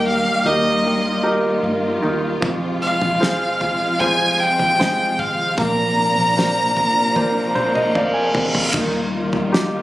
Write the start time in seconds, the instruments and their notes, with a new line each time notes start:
Already playing: fingered electric bass D#2, grand piano D#3 D#4 G4 A#4, string section D#3 G3 A#3 G4, nylon-string guitar D#3 A#3
0.06 nylon-string guitar D#4, violin F5
0.44 fingered electric bass D#2, grand piano D#4 G4 A#4, string section F4, violin D#5
0.85 nylon-string guitar A#3 D#4 G4
1.23 grand piano D#4 G4 A#4
1.63 fingered electric bass G2, nylon-string guitar A#3
2.02 fingered electric bass D#2, grand piano D#3, nylon-string guitar D#4
2.41 fingered electric bass F2, nylon-string guitar F2, string section C3 F3 G#3, grand piano F3, kick, floor tom
2.82 nylon-string guitar G#3, violin F5
3.01 fingered electric bass F2, floor tom
3.20 nylon-string guitar C4, grand piano F4 G#4 C5, snare
3.61 floor tom
4.00 nylon-string guitar G#3 C4 F4, grand piano F4 G#4 C5, violin G#5, kick, floor tom
4.40 violin G5
4.59 floor tom
4.79 fingered electric bass G#2, nylon-string guitar G#3, grand piano F4 G#4 C5, snare
5.19 fingered electric bass G#1, nylon-string guitar C4, violin F5, kick
5.58 fingered electric bass A#1, nylon-string guitar A#2, string section F3 A#3 D4, grand piano A#3, violin A#5, kick, floor tom
5.99 nylon-string guitar A#3
6.18 fingered electric bass A#1
6.37 nylon-string guitar C4, grand piano A#4 C5 D5, snare
6.77 floor tom
7.15 nylon-string guitar A#3 C4 F4, grand piano A#4 C5 D5, kick, high tom, reverse cymbal
7.55 grand piano C5, mid tom
7.75 grand piano D#5, mid tom
7.95 nylon-string guitar A#3, grand piano A#4 C5 D5 F5, mid tom
8.14 grand piano G#5
8.35 nylon-string guitar C4, floor tom
8.55 floor tom
8.73 fingered electric bass D#2, grand piano D#3, string section D#3 G3 A#3 F4, nylon-string guitar D#3 F4, kick, floor tom, crash, impact
9.14 nylon-string guitar D#4
9.33 floor tom
9.52 grand piano D#4 F4 G4, nylon-string guitar F4, snare